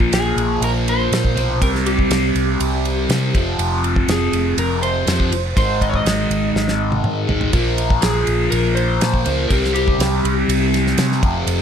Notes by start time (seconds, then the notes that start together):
Already playing: A#2 F3 A#3
0.00 kick
0.12 A#1 G#4, snare, ride
0.36 A#1, ride
0.61 A#1 A#4, ride
0.88 C5, ride
1.11 A#2, snare, ride
1.25 kick
1.35 B1 A#2 F3 A#3, ride
1.60 C2 C3 G3 C4 A#4, kick, ride
1.75 snare
1.86 G4, ride
1.99 kick
2.10 C2, snare, ride
2.35 C2, ride
2.60 C2, ride
2.85 ride
3.09 C3, snare, ride
3.34 F1 F2 C3 F3, kick, ride
3.58 F1, ride
3.84 ride
3.96 kick
4.08 F1 G#4, snare, ride
4.33 F1, ride
4.57 F1 A#4, ride
4.83 C5, ride
5.06 F2 C3 F3, snare, ride
5.20 kick
5.31 F1, ride
5.56 G#1 G#2 D#3 G#3 C5, kick, ride
5.81 D#5, kick, ride
5.89 C#5
5.94 D#5, kick
6.05 G#1, snare, ride
6.29 G#1, ride
6.54 G#1, snare
6.68 snare
6.92 high tom
7.03 G#2, mid tom
7.28 G#1 G#2 D#3 G#3, floor tom
7.41 floor tom
7.52 A#1 A#2 F3 A#3, kick, ride
7.78 ride
7.90 kick
8.02 A#1 G#4, snare, ride
8.27 A#1, ride
8.50 A#1 A#4, ride
8.75 C5, ride
9.01 A#2, snare, ride
9.14 kick
9.25 C#2 A#2 F3 A#3, ride
9.48 C2 C3 G3 C4 A#4, kick, ride
9.64 snare
9.74 G4, ride
9.88 kick
9.98 C2, snare, ride
10.24 C2, ride
10.48 C2, ride
10.74 snare, ride
10.87 snare
10.97 C3, snare, ride
11.12 snare
11.22 F1 F2 C3 F3, kick, ride
11.46 F1, ride